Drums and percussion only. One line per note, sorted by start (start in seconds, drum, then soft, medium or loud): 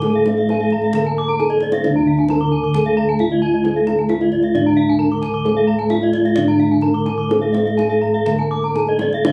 0.02 kendang high soft
0.13 kendang slap soft
0.26 kendang high soft
0.37 kendang slap soft
0.49 kendang high soft
0.60 kendang slap soft
0.70 kendang low soft
0.82 kendang slap soft
0.93 kendang low medium
1.05 kendang slap soft
1.28 kendang slap soft
1.50 kendang low soft
1.60 kendang high soft
1.72 kendang high soft
1.84 kendang high soft
2.18 kendang slap soft
2.28 kendang high soft
2.40 kendang slap soft
2.74 kendang low soft
2.86 kendang slap soft
3.19 kendang low soft
3.30 kendang slap soft
3.65 kendang high soft
3.87 kendang high soft
3.98 kendang slap soft
4.09 kendang high soft
4.21 kendang slap soft
4.32 kendang low soft
4.43 kendang slap soft
4.55 kendang low soft
4.67 kendang slap soft
5.12 kendang slap soft
5.23 kendang low soft
5.46 kendang high soft
5.79 kendang slap soft
5.90 kendang high soft
6.01 kendang slap soft
6.13 kendang low soft
6.26 kendang slap soft
6.36 kendang low soft
6.48 kendang slap soft
6.81 kendang low soft
6.94 kendang slap soft
7.06 kendang high soft
7.31 kendang high soft
7.42 kendang slap soft
7.54 kendang high soft
7.67 kendang slap soft
7.79 kendang high soft
7.91 kendang slap soft
8.04 kendang low soft
8.15 kendang slap soft
8.26 kendang low soft
8.38 kendang slap soft
8.63 kendang slap soft
8.76 kendang low soft
8.87 kendang slap soft
8.99 kendang high soft
8.99 kendang low soft
9.13 kendang slap soft
9.25 kendang high medium